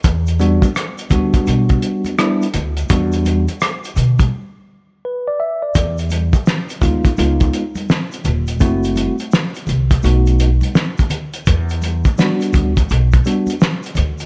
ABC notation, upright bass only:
X:1
M:4/4
L:1/16
Q:"Swing 16ths" 1/4=84
K:Em
V:1 name="Upright bass" clef=bass
E,,4 z2 D,,2 B,,,2 z4 D,,2 | E,,4 z2 B,,2 z8 | E,,4 z2 D,,2 ^C,,2 z4 ^D,,,2 | F,,,3 z3 C,,2 B,,,4 z4 |
E,,4 z2 D,,2 B,,,2 z4 D,,2 |]